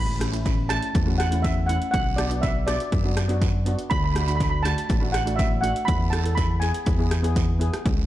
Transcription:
0.00 0.77 A1 medium
0.00 0.72 B5 medium
0.19 0.27 A3 medium
0.19 0.28 C#4 medium
0.19 0.28 E4 medium
0.19 cross-stick medium
0.19 closed hi-hat medium
0.32 0.55 A3 medium
0.32 0.55 C#4 medium
0.32 0.56 E4 medium
0.32 closed hi-hat medium
0.46 kick medium
0.46 closed hi-hat medium
0.46 short guiro medium
0.68 0.91 A3 medium
0.68 0.92 C#4 medium
0.68 0.92 E4 medium
0.68 1.20 A5 medium
0.68 cross-stick medium
0.68 closed hi-hat medium
0.68 short guiro medium
0.83 closed hi-hat medium
0.95 1.76 E2 medium
0.95 kick loud
0.95 closed hi-hat medium
0.95 long guiro medium
1.06 1.21 A3 medium
1.06 1.22 C#4 medium
1.06 1.22 F#4 medium
1.18 1.44 F#5 medium
1.18 cross-stick medium
1.18 closed hi-hat medium
1.18 short guiro medium
1.31 1.53 A3 medium
1.31 1.54 C#4 medium
1.31 1.54 E4 medium
1.31 closed hi-hat medium
1.42 1.69 E5 medium
1.42 kick medium
1.42 closed hi-hat medium
1.42 short guiro medium
1.66 1.93 A3 medium
1.66 1.94 C#4 medium
1.66 1.94 E4 medium
1.66 1.90 F#5 medium
1.66 closed hi-hat medium
1.82 closed hi-hat medium
1.91 2.75 B1 medium
1.91 2.18 F#5 medium
1.91 kick loud
1.91 closed hi-hat medium
1.91 long guiro medium
2.16 2.25 B3 medium
2.16 2.26 D4 medium
2.16 2.26 F#4 medium
2.16 2.40 D5 medium
2.16 cross-stick medium
2.16 closed hi-hat medium
2.30 2.53 B3 medium
2.30 2.53 D4 medium
2.30 2.53 F#4 medium
2.30 closed hi-hat medium
2.41 2.67 E5 medium
2.41 kick medium
2.41 closed hi-hat medium
2.41 short guiro medium
2.67 2.89 B3 medium
2.67 2.90 D4 medium
2.67 2.90 F#4 medium
2.67 3.62 D5 medium
2.67 cross-stick medium
2.67 closed hi-hat medium
2.67 short guiro medium
2.80 closed hi-hat medium
2.92 3.73 F#2 medium
2.92 kick medium
2.92 closed hi-hat medium
2.92 long guiro medium
3.04 3.19 B3 medium
3.04 3.19 D4 medium
3.04 3.20 F#4 medium
3.17 cross-stick medium
3.17 closed hi-hat medium
3.17 short guiro medium
3.28 3.51 B3 medium
3.28 3.51 D4 medium
3.28 3.52 F#4 medium
3.28 closed hi-hat medium
3.42 kick medium
3.42 closed hi-hat medium
3.42 short guiro medium
3.66 3.91 B3 medium
3.66 3.91 D4 medium
3.66 3.91 F#4 medium
3.66 closed hi-hat medium
3.79 closed hi-hat medium
3.90 4.72 D2 medium
3.90 3.97 B5 medium
3.90 kick loud
3.90 closed hi-hat medium
3.90 long guiro medium
3.98 4.03 B5 medium
4.04 4.11 B5 medium
4.12 4.22 A3 medium
4.12 4.23 D4 medium
4.12 4.19 B5 medium
4.12 cross-stick medium
4.12 closed hi-hat medium
4.16 4.23 F#4 medium
4.20 4.26 B5 medium
4.27 4.50 A3 medium
4.27 4.50 D4 medium
4.27 4.50 F#4 medium
4.27 4.34 B5 medium
4.27 closed hi-hat medium
4.35 4.42 B5 medium
4.40 4.48 B5 medium
4.40 kick medium
4.40 closed hi-hat medium
4.40 short guiro medium
4.50 4.58 B5 medium
4.63 4.87 A3 medium
4.63 4.87 D4 medium
4.63 4.87 F#4 medium
4.63 5.15 A5 medium
4.63 cross-stick medium
4.63 closed hi-hat medium
4.63 short guiro medium
4.78 closed hi-hat medium
4.89 5.71 A1 medium
4.89 kick medium
4.89 closed hi-hat medium
4.89 long guiro medium
5.01 5.16 A3 medium
5.01 5.16 D4 medium
5.01 5.17 F#4 medium
5.12 5.39 F#5 medium
5.12 cross-stick medium
5.12 closed hi-hat medium
5.12 short guiro medium
5.25 5.48 A3 medium
5.25 5.49 D4 medium
5.25 5.49 F#4 medium
5.25 closed hi-hat medium
5.36 5.47 E5 medium
5.36 kick medium
5.36 closed hi-hat medium
5.36 short guiro medium
5.61 5.87 A3 medium
5.61 5.88 D4 medium
5.61 5.88 F#4 medium
5.61 5.85 F#5 medium
5.61 closed hi-hat medium
5.76 closed hi-hat medium
5.85 6.69 E2 medium
5.85 6.12 B5 medium
5.85 kick medium
5.85 closed hi-hat medium
5.85 long guiro medium
6.10 6.20 B3 medium
6.10 6.20 E4 medium
6.10 6.21 A4 medium
6.10 6.37 A5 medium
6.10 cross-stick medium
6.10 closed hi-hat medium
6.24 6.47 B3 medium
6.24 6.47 E4 medium
6.24 6.48 A4 medium
6.24 closed hi-hat medium
6.35 6.47 B5 medium
6.35 kick medium
6.35 closed hi-hat medium
6.35 short guiro medium
6.60 6.84 B3 medium
6.60 6.84 E4 medium
6.60 6.85 G#4 medium
6.60 7.56 G#5 medium
6.60 closed hi-hat medium
6.60 short guiro medium
6.74 closed hi-hat medium
6.86 7.68 E2 medium
6.86 kick loud
6.86 closed hi-hat medium
6.86 long guiro medium
6.98 7.13 B3 medium
6.98 7.14 E4 medium
6.98 7.14 G#4 medium
7.11 cross-stick medium
7.11 closed hi-hat medium
7.11 short guiro medium
7.22 7.45 B3 medium
7.22 7.46 E4 medium
7.22 7.46 G#4 medium
7.22 closed hi-hat medium
7.36 kick medium
7.36 closed hi-hat medium
7.36 short guiro medium
7.59 7.85 B3 medium
7.59 7.85 E4 medium
7.59 7.86 G#4 medium
7.59 closed hi-hat medium
7.74 cross-stick medium
7.74 closed hi-hat medium
7.86 8.06 C#2 medium
7.86 kick loud
7.86 closed hi-hat medium
7.86 long guiro medium

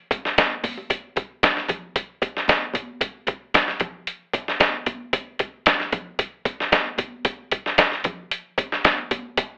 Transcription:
0.11 kick medium
0.11 closed hi-hat medium
0.11 muted conga soft
0.25 snare soft
0.38 snare loud
0.38 closed hi-hat medium
0.38 high conga medium
0.64 kick medium
0.64 open hi-hat medium
0.64 high conga medium
0.78 high conga medium
0.90 kick medium
0.90 closed hi-hat medium
0.90 muted conga soft
1.16 kick medium
1.16 closed hi-hat medium
1.16 muted conga soft
1.43 snare loud
1.43 closed hi-hat medium
1.43 high conga medium
1.57 snare soft
1.68 kick medium
1.68 closed hi-hat medium
1.68 muted conga soft
1.68 low conga medium
1.96 kick medium
1.96 closed hi-hat medium
2.22 kick medium
2.22 closed hi-hat medium
2.22 muted conga soft
2.37 snare soft
2.48 snare loud
2.48 closed hi-hat medium
2.48 high conga medium
2.73 kick medium
2.73 closed hi-hat medium
2.73 high conga medium
3.01 kick loud
3.01 closed hi-hat medium
3.01 muted conga soft
3.27 kick medium
3.27 closed hi-hat medium
3.27 muted conga soft
3.54 snare loud
3.54 closed hi-hat medium
3.54 high conga medium
3.68 snare soft
3.80 kick medium
3.80 closed hi-hat medium
3.80 muted conga soft
3.80 low conga medium
4.07 closed hi-hat medium
4.33 kick medium
4.33 closed hi-hat medium
4.33 muted conga soft
4.48 snare soft
4.60 snare loud
4.60 closed hi-hat medium
4.60 high conga medium
4.86 kick medium
4.86 closed hi-hat medium
4.86 high conga medium
5.13 kick loud
5.13 closed hi-hat medium
5.13 muted conga soft
5.39 kick medium
5.39 closed hi-hat medium
5.39 muted conga soft
5.66 snare loud
5.66 closed hi-hat loud
5.66 high conga medium
5.80 snare soft
5.92 kick medium
5.92 closed hi-hat medium
5.92 muted conga soft
5.92 low conga medium
6.19 kick medium
6.19 closed hi-hat medium
6.45 kick medium
6.45 closed hi-hat medium
6.45 muted conga soft
6.60 snare soft
6.72 snare loud
6.72 closed hi-hat medium
6.72 high conga medium
6.98 kick medium
6.98 closed hi-hat medium
6.98 high conga medium
7.25 kick loud
7.25 closed hi-hat medium
7.25 muted conga soft
7.51 kick medium
7.51 closed hi-hat medium
7.66 snare soft
7.78 snare loud
7.78 closed hi-hat medium
7.78 high conga medium
7.92 snare soft
8.04 kick medium
8.04 closed hi-hat medium
8.04 muted conga soft
8.04 low conga medium
8.31 closed hi-hat medium
8.58 kick medium
8.58 closed hi-hat medium
8.58 muted conga soft
8.72 snare soft
8.85 snare loud
8.85 closed hi-hat medium
8.85 high conga medium
9.11 kick medium
9.11 closed hi-hat medium
9.11 high conga medium
9.37 kick loud
9.37 closed hi-hat medium
9.37 muted conga soft

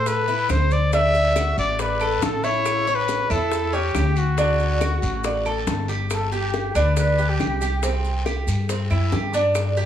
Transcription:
0.00 0.45 A2 loud
0.00 0.27 A4 medium
0.06 0.52 B4 medium
0.06 high bongo medium
0.06 long guiro medium
0.06 maracas medium
0.28 0.49 E4 medium
0.28 maracas soft
0.49 1.51 D2 medium
0.49 0.91 C5 medium
0.49 0.74 C5 loud
0.49 high bongo medium
0.49 low bongo medium
0.49 short guiro medium
0.49 claves medium
0.49 maracas medium
0.71 0.93 D5 medium
0.71 short guiro medium
0.71 maracas soft
0.93 1.35 D4 medium
0.93 1.54 E5 loud
0.93 high bongo medium
0.93 long guiro medium
0.93 maracas medium
1.14 high bongo soft
1.14 maracas soft
1.36 1.78 F#4 medium
1.36 high bongo medium
1.36 short guiro medium
1.36 claves medium
1.36 maracas medium
1.57 2.18 A1 loud
1.57 1.82 D5 loud
1.57 short guiro medium
1.57 maracas soft
1.79 2.24 B4 medium
1.79 2.00 D5 medium
1.79 high bongo medium
1.79 long guiro medium
1.79 maracas medium
2.00 2.42 A4 medium
2.00 high bongo soft
2.00 claves medium
2.00 maracas soft
2.22 3.24 A1 medium
2.22 2.46 A4 loud
2.22 high bongo medium
2.22 low bongo medium
2.22 short guiro medium
2.22 maracas medium
2.44 2.85 E4 medium
2.44 2.97 C#5 loud
2.44 high bongo soft
2.44 short guiro medium
2.44 maracas soft
2.65 high bongo medium
2.65 long guiro medium
2.65 claves medium
2.65 maracas medium
2.87 3.29 C#5 medium
2.87 maracas soft
2.95 3.33 B4 loud
3.08 high bongo medium
3.08 short guiro medium
3.08 maracas medium
3.30 3.91 E2 loud
3.30 3.72 E4 medium
3.30 3.76 A4 loud
3.30 short guiro medium
3.30 claves medium
3.30 maracas soft
3.51 high bongo medium
3.51 long guiro medium
3.51 maracas medium
3.73 3.94 C#4 medium
3.73 4.20 G4 loud
3.73 maracas soft
3.94 4.96 D2 loud
3.94 4.36 G4 medium
3.94 high bongo medium
3.94 low bongo medium
3.94 short guiro medium
3.94 claves medium
3.94 maracas medium
4.16 5.68 F#4 medium
4.16 short guiro medium
4.16 maracas soft
4.37 4.80 D4 medium
4.37 high bongo medium
4.37 long guiro medium
4.37 maracas medium
4.60 high bongo soft
4.60 maracas soft
4.80 5.23 F#4 medium
4.80 high bongo medium
4.80 short guiro medium
4.80 claves medium
4.80 maracas medium
5.02 5.63 A1 loud
5.02 short guiro medium
5.02 maracas soft
5.24 5.45 D5 medium
5.24 high bongo medium
5.24 long guiro medium
5.24 maracas medium
5.46 5.88 A4 medium
5.46 high bongo soft
5.46 claves medium
5.46 maracas soft
5.67 6.69 G1 loud
5.67 high bongo medium
5.67 low bongo medium
5.67 short guiro medium
5.67 maracas medium
5.88 6.10 G4 medium
5.88 high bongo soft
5.88 short guiro medium
5.88 maracas soft
6.10 6.31 A4 medium
6.10 high bongo medium
6.10 long guiro medium
6.10 claves medium
6.10 maracas medium
6.32 6.74 G4 medium
6.32 6.77 G4 medium
6.32 high bongo soft
6.32 maracas soft
6.54 high bongo medium
6.54 short guiro medium
6.54 maracas soft
6.75 7.36 D2 loud
6.75 7.17 D4 medium
6.75 6.96 B4 loud
6.75 high bongo soft
6.75 short guiro medium
6.75 claves medium
6.75 maracas medium
6.96 7.30 B4 loud
6.96 high bongo medium
6.96 long guiro medium
6.96 maracas medium
7.18 7.60 G4 medium
7.18 maracas soft
7.29 8.15 G4 medium
7.39 8.41 C2 medium
7.39 high bongo soft
7.39 low bongo medium
7.39 short guiro medium
7.39 claves medium
7.39 maracas soft
7.61 7.82 G4 medium
7.61 high bongo soft
7.61 short guiro medium
7.61 maracas medium
7.83 8.25 C4 medium
7.83 high bongo medium
7.83 long guiro medium
7.83 maracas medium
8.05 high bongo soft
8.05 maracas soft
8.26 8.68 G4 medium
8.26 high bongo medium
8.26 short guiro medium
8.26 claves medium
8.26 maracas soft
8.47 8.87 G2 medium
8.47 high bongo soft
8.47 short guiro medium
8.47 maracas medium
8.69 8.90 C4 medium
8.69 high bongo medium
8.69 long guiro medium
8.69 maracas medium
8.90 9.10 F#2 medium
8.90 9.11 E4 medium
8.90 claves medium
8.90 maracas soft
9.12 9.86 G2 medium
9.12 9.33 G4 medium
9.12 high bongo soft
9.12 low bongo medium
9.12 short guiro medium
9.12 maracas soft
9.34 9.76 D4 medium
9.34 high bongo soft
9.34 short guiro medium
9.34 maracas medium
9.55 high bongo medium
9.55 long guiro medium
9.55 claves medium
9.55 maracas medium
9.77 9.86 G4 medium
9.77 high bongo soft
9.77 maracas soft

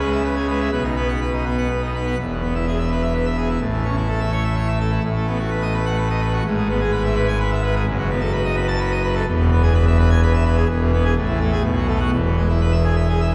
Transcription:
0.00 0.69 C#2 medium
0.00 0.69 C#3 medium
0.00 0.21 G#3 medium
0.00 0.11 B4 medium
0.12 0.23 E5 medium
0.24 0.35 B4 medium
0.36 0.47 G#4 medium
0.48 0.69 G#3 medium
0.48 0.59 B4 medium
0.60 0.71 E5 medium
0.72 2.15 B1 medium
0.72 2.14 B2 medium
0.72 0.83 B4 medium
0.84 0.95 D#4 medium
0.96 1.18 B3 medium
0.96 1.08 B4 medium
1.09 1.20 F#5 medium
1.21 1.32 B4 medium
1.33 1.44 D#4 medium
1.45 1.67 B3 medium
1.45 1.56 B4 medium
1.58 1.69 F#5 medium
1.70 1.81 B4 medium
1.82 1.93 D#4 medium
1.94 2.15 B3 medium
1.94 2.05 B4 medium
2.07 2.17 F#5 medium
2.19 3.58 E1 medium
2.19 3.58 E2 medium
2.31 2.42 B2 medium
2.43 2.54 B3 medium
2.55 2.66 E4 medium
2.68 2.78 G#4 medium
2.79 2.89 E5 medium
2.92 3.02 B4 medium
3.03 3.13 E5 medium
3.15 3.25 B4 medium
3.26 3.37 E5 medium
3.38 3.48 G#4 medium
3.49 3.60 E4 medium
3.60 5.00 A1 medium
3.60 5.00 A2 medium
3.73 3.84 E3 medium
3.85 3.96 C#4 medium
3.97 4.08 E4 medium
4.08 4.20 A4 medium
4.20 4.31 E5 medium
4.32 4.43 C#5 medium
4.44 4.55 E5 medium
4.56 4.67 C#5 medium
4.67 4.79 E5 medium
4.80 4.91 A4 medium
4.92 5.02 E4 medium
5.03 6.41 A1 medium
5.03 6.41 A2 medium
5.15 5.26 A3 medium
5.27 5.38 B3 medium
5.38 5.50 F#4 medium
5.50 5.62 B4 medium
5.62 5.73 D#5 medium
5.74 5.85 B4 medium
5.86 5.97 F#5 loud
5.97 6.08 B4 medium
6.10 6.21 D#5 medium
6.21 6.32 B4 medium
6.33 6.43 F#4 medium
6.45 7.83 G#1 medium
6.45 7.83 G#2 medium
6.57 6.68 G#3 medium
6.69 6.80 B3 medium
6.81 6.91 G#4 medium
6.92 7.03 B4 medium
7.04 7.15 E5 medium
7.16 7.27 B4 medium
7.28 7.38 G#5 loud
7.40 7.50 B4 medium
7.51 7.62 E5 medium
7.63 7.74 B4 medium
7.75 7.85 G#4 medium
7.87 9.23 F#1 medium
7.87 9.23 F#2 medium
7.98 8.09 F#3 medium
8.10 8.20 B3 medium
8.21 8.32 A4 medium
8.33 8.44 B4 medium
8.45 8.55 D#5 medium
8.56 8.67 B4 medium
8.68 8.79 A5 loud
8.80 8.91 B4 medium
8.91 9.02 D#5 medium
9.03 9.14 B4 medium
9.15 9.25 A4 medium
9.27 10.64 E1 loud
9.27 10.64 E2 loud
9.40 9.50 B2 medium
9.52 9.62 B3 medium
9.63 9.73 G#4 medium
9.74 9.85 B4 medium
9.87 9.97 E5 medium
9.99 10.09 B4 medium
10.10 10.21 G#5 loud
10.23 10.33 B4 medium
10.34 10.44 E5 medium
10.46 10.56 B4 medium
10.57 10.67 G#4 medium
10.69 11.14 E1 loud
10.69 11.14 E2 medium
10.81 10.91 B2 medium
10.93 11.03 B3 medium
11.04 11.14 G#4 loud
11.17 11.63 A1 loud
11.17 11.63 A2 medium
11.28 11.39 E3 medium
11.40 11.51 A3 medium
11.52 11.62 G#4 loud
11.64 12.11 B1 loud
11.64 12.11 B2 loud
11.76 11.87 F#3 medium
11.88 11.99 A3 medium
12.00 12.10 F#4 loud
12.12 13.35 E1 medium
12.12 13.35 E2 medium
12.25 12.36 B2 medium
12.37 12.48 G#3 medium
12.49 12.60 E4 medium
12.61 12.72 B4 medium
12.72 12.83 E5 loud
12.84 12.95 G#4 medium
12.96 13.08 E5 medium
13.09 13.20 G#4 medium
13.21 13.32 E5 medium

